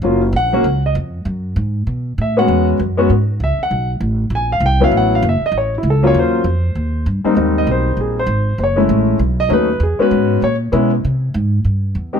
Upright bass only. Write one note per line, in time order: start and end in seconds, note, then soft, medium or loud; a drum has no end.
0.02 0.32 F#1 medium
0.33 0.63 A#1 medium
0.64 0.94 C#2 medium
0.95 1.25 F2 medium
1.25 1.55 F#2 medium
1.56 1.86 G#2 medium
1.87 2.17 B2 medium
2.18 2.47 A2 medium
2.48 2.78 E2 medium
2.79 3.09 F#2 medium
3.10 3.39 G#2 medium
3.40 3.58 C#2 medium
3.59 muted upright bass stroke soft
3.71 4.00 B1 medium
4.00 4.29 A1 medium
4.30 4.60 A#1 medium
4.60 4.91 C2 medium
4.91 5.22 A1 medium
5.22 5.40 F#1 loud
5.41 muted upright bass stroke soft
5.52 5.82 A1 medium
5.83 6.13 C#2 medium
6.14 6.44 D#2 medium
6.44 6.74 F2 medium
6.75 7.05 D#2 medium
7.06 7.24 G2 medium
7.25 muted upright bass stroke soft
7.37 7.66 D#2 medium
7.67 7.96 B1 medium
7.97 8.26 A#1 medium
8.27 8.57 G#1 medium
8.58 8.88 F#1 medium
8.89 9.19 A1 medium
9.19 9.49 B1 medium
9.50 9.79 D#2 medium
9.80 9.98 E2 medium
9.99 muted upright bass stroke soft
10.11 10.41 G#2 medium
10.42 10.72 A#2 medium
10.73 11.02 B2 medium
11.05 11.34 C3 medium
11.34 11.64 G#2 medium
11.64 11.94 G2 medium
11.95 12.20 E2 medium